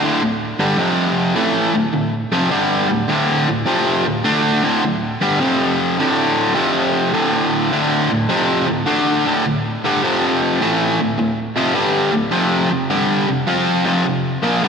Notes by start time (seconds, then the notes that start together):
0.03 D2 A2 D3
0.22 D2 A2
0.59 G2 D3 G3
0.77 F2 C3 F3
1.35 A2 E3 A3
1.75 D2 A2
1.93 D2 A2
2.32 F2 C3 F3
2.50 G2 D3 G3
2.90 D2 A2
3.09 D2 A2 D3
3.49 D2 A2
3.66 F2 C3 F3
4.06 D2 A2
4.25 D3 A3 D4
4.63 D2 A2 D3
4.84 D2 A2
5.21 G2 D3 G3
5.41 F2 C3 F3
5.99 D2 A2 D3
6.54 F2 C3 F3
7.13 D2 A2 D3
7.72 D2 A2 D3
8.10 D2 A2
8.29 F2 C3 F3
8.68 D2 A2
8.86 D3 A3 D4
9.26 D2 A2 D3
9.46 D2 A2
9.84 G2 D3 G3
10.03 F2 C3 F3
10.61 A2 E3 A3
11.00 D2 A2
11.18 D2 A2
11.56 F2 C3 F3
11.74 G2 D3 G3
12.12 D2 A2
12.32 F2 C3 F3
12.70 F2 C3
12.90 G2 D3 G3
13.28 F2 C3
13.47 F3 C4 F4
13.85 F2 C3 F3
14.05 F2 C3
14.43 A#2 F3 A#3
14.63 G2 D3 G3